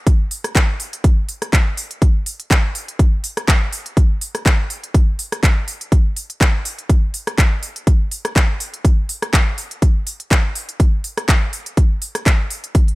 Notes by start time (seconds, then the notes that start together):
0.07 kick, closed hi-hat
0.31 open hi-hat
0.44 cross-stick, closed hi-hat
0.55 kick, clap, closed hi-hat
0.80 open hi-hat
0.93 closed hi-hat
1.04 kick, closed hi-hat
1.29 open hi-hat
1.42 cross-stick, closed hi-hat
1.53 kick, clap, closed hi-hat
1.77 open hi-hat
1.91 closed hi-hat
2.02 kick, closed hi-hat
2.26 open hi-hat
2.40 closed hi-hat
2.51 kick, clap, closed hi-hat
2.75 open hi-hat
2.88 closed hi-hat
2.99 kick, closed hi-hat
3.24 open hi-hat
3.37 cross-stick, closed hi-hat
3.48 kick, clap, closed hi-hat
3.73 open hi-hat
3.86 closed hi-hat
3.97 kick, closed hi-hat
4.21 open hi-hat
4.35 cross-stick, closed hi-hat
4.46 kick, clap, closed hi-hat
4.70 open hi-hat
4.84 closed hi-hat
4.94 kick, closed hi-hat
5.19 open hi-hat
5.32 cross-stick, closed hi-hat
5.43 kick, clap, closed hi-hat
5.68 open hi-hat
5.81 closed hi-hat
5.92 kick, closed hi-hat
6.16 open hi-hat
6.30 closed hi-hat
6.41 kick, clap, closed hi-hat
6.65 open hi-hat
6.79 closed hi-hat
6.90 kick, closed hi-hat
7.14 open hi-hat
7.27 cross-stick, closed hi-hat
7.38 kick, clap, closed hi-hat
7.63 open hi-hat
7.76 closed hi-hat
7.87 kick, closed hi-hat
8.11 open hi-hat
8.25 cross-stick, closed hi-hat
8.36 kick, clap, closed hi-hat
8.60 open hi-hat
8.74 closed hi-hat
8.85 kick, closed hi-hat
9.09 open hi-hat
9.22 cross-stick, closed hi-hat
9.33 kick, clap, closed hi-hat
9.58 open hi-hat
9.71 closed hi-hat
9.82 kick, closed hi-hat
10.07 open hi-hat
10.20 closed hi-hat
10.31 kick, clap, closed hi-hat
10.55 open hi-hat
10.69 closed hi-hat
10.80 kick, closed hi-hat
11.04 open hi-hat
11.17 cross-stick, closed hi-hat
11.29 kick, clap, closed hi-hat
11.53 open hi-hat
11.66 closed hi-hat
11.77 kick, closed hi-hat
12.02 open hi-hat
12.15 cross-stick, closed hi-hat
12.26 kick, clap, closed hi-hat
12.50 open hi-hat
12.64 closed hi-hat
12.75 kick, closed hi-hat
12.88 closed hi-hat